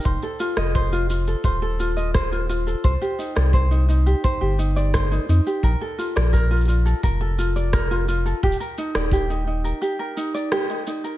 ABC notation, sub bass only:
X:1
M:4/4
L:1/16
Q:1/4=86
K:Fmix
V:1 name="Sub bass" clef=bass
F,,, z2 F,,,4 z E,,,6- E,,, z | C,, z2 C,,4 z2 G,,,4 z F,, z | B,,, z2 B,,,4 z F,,,6- F,,, z | E,,, z2 E,,,4 z8 z |]